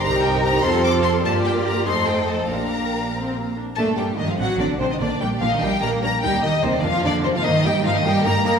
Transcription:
<<
  \new Staff \with { instrumentName = "Violin section" } { \time 6/8 \key bes \major \tempo 4. = 98 bes''8 g''8 bes''8 c'''8 d'''8 c'''8 | a''8 g''8 bes''8 c'''8 g''8 a''8 | bes''2~ bes''8 r8 | \key g \minor a''8 g''8 ees''16 f''16 fis''8 d''8 c''16 ees''16 |
d''8 g''8 f''16 ees''16 g''8 bes''8 bes''8 | g''8 ees''8 c''16 d''16 f''8 d''8 c''16 f''16 | ees''8 g''8 f''16 ees''16 g''8 bes''8 bes''8 | }
  \new Staff \with { instrumentName = "Violin section" } { \time 6/8 \key bes \major << { c''2. | d''4. ees''4. | f''2~ f''8 r8 | \key g \minor a'8 g'8 ees'16 f'16 fis'8 d'8 c'16 ees'16 |
d'8 g'8 f'16 ees'16 g'8 bes'8 bes'8 | g'8 ees'8 c'16 d'16 f'8 d'8 c'16 f'16 | ees'8 g'8 f'16 ees'16 g'8 bes'8 bes'8 | } \\ { g'4. a'4. | bes'4. c''4. | g'2~ g'8 r8 | r2. |
r2. | r2. | r2. | } >> }
  \new Staff \with { instrumentName = "Viola section" } { \time 6/8 \key bes \major <ees' g'>4. <c' f'>4. | <bes f'>4. <a ees'>4. | <bes d'>4. c'8 bes8 d'8 | \key g \minor <bes d'>8 <bes d'>8 <bes d'>8 <c' d'>8 <c' d'>8 <c' d'>8 |
<bes d'>8 <bes d'>8 <bes d'>8 <bes d'>8 <bes d'>8 <bes d'>8 | <bes ees'>8 <bes ees'>8 <bes ees'>8 <bes d'>8 <bes d'>8 <bes d'>8 | <bes ees'>8 <bes ees'>8 <bes ees'>8 <bes ees'>8 <bes ees'>8 <bes ees'>8 | }
  \new Staff \with { instrumentName = "Cello section" } { \clef bass \time 6/8 \key bes \major bes'4. a'4. | g'4. a'4. | bes'2~ bes'16 r8. | \key g \minor a8 g8 ees16 f16 fis8 d8 c16 ees16 |
d8 g8 f16 ees16 g8 bes8 bes8 | g8 ees8 c16 d16 f8 d8 c16 f16 | ees8 g8 f16 ees16 g8 bes8 bes8 | }
  \new Staff \with { instrumentName = "Double bass section" } { \clef bass \time 6/8 \key bes \major c,4. f,4. | g,4. f,4. | bes,,2~ bes,,8 r8 | \key g \minor g,8 g,8 g,8 a,,8 a,,8 a,,8 |
bes,,8 bes,,8 bes,,8 bes,,8 bes,,8 bes,,8 | ees,8 ees,8 ees,8 f,8 f,8 f,8 | g,8 g,8 g,8 g,8 g,8 g,8 | }
>>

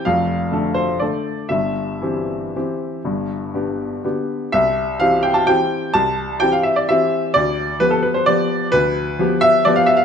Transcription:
<<
  \new Staff \with { instrumentName = "Upright piano" } { \time 3/4 \key c \major \tempo 4 = 126 f''4. c''8 d''4 | e''2.~ | e''2 r4 | e''4 f''8 g''16 a''16 g''4 |
a''4 g''16 f''16 e''16 d''16 e''4 | d''4 b'16 a'16 b'16 c''16 d''4 | b'4. e''8 d''16 f''16 e''16 f''16 | }
  \new Staff \with { instrumentName = "Upright piano" } { \time 3/4 \key c \major <f,, f,>4 <d a a'>4 <d a a'>4 | <g,, g,>4 <e c' g'>4 <e c' g'>4 | <g,, g,>4 <d b g'>4 <d b g'>4 | c,4 <e c' g'>4 <e c' g'>4 |
c,4 <e c' g'>4 <e c' g'>4 | d,4 <f b g'>4 <f b g'>4 | d,4 <f b g'>4 <f b g'>4 | }
>>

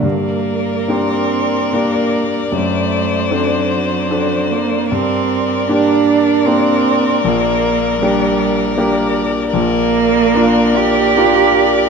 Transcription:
<<
  \new Staff \with { instrumentName = "Violin" } { \time 3/4 \key g \minor \tempo 4 = 77 d''2.~ | d''2. | d''2.~ | d''2. |
\key bes \major d''2. | }
  \new Staff \with { instrumentName = "Violin" } { \time 3/4 \key g \minor bes'2. | c''2. | bes'2.~ | bes'2. |
\key bes \major bes'2. | }
  \new Staff \with { instrumentName = "Grand piano" } { \time 3/4 \key g \minor g,4 <bes d' g'>4 <bes d' g'>4 | fis,4 <c' d' a'>4 <c' d' a'>4 | g,4 <bes d' g'>4 <bes d' g'>4 | bes,,4 <bes d' g'>4 <bes d' g'>4 |
\key bes \major bes,,4 <bes d' f'>4 <bes d' f'>4 | }
  \new Staff \with { instrumentName = "Cello" } { \time 3/4 \key g \minor bes4 c'4 bes4 | a4 fis4. bes8 | c'4 d'4 c'4 | bes4 g4. r8 |
\key bes \major bes4. g'4. | }
>>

